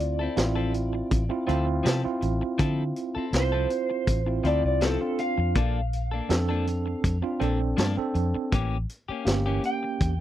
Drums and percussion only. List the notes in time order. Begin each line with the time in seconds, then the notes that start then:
0.00 closed hi-hat
0.37 snare, closed hi-hat
0.74 closed hi-hat
1.11 kick, closed hi-hat
1.49 closed hi-hat
1.86 snare, closed hi-hat
2.22 closed hi-hat
2.59 kick, closed hi-hat
2.96 closed hi-hat
3.33 snare, closed hi-hat
3.70 closed hi-hat
4.07 kick, closed hi-hat
4.45 closed hi-hat
4.81 snare, closed hi-hat
5.19 closed hi-hat
5.55 kick, closed hi-hat
5.93 closed hi-hat
6.30 snare, closed hi-hat
6.67 closed hi-hat
7.04 kick, closed hi-hat
7.41 closed hi-hat
7.78 snare, closed hi-hat
8.15 closed hi-hat
8.52 kick, closed hi-hat
8.89 closed hi-hat
9.26 snare, closed hi-hat
9.64 closed hi-hat
10.01 kick, closed hi-hat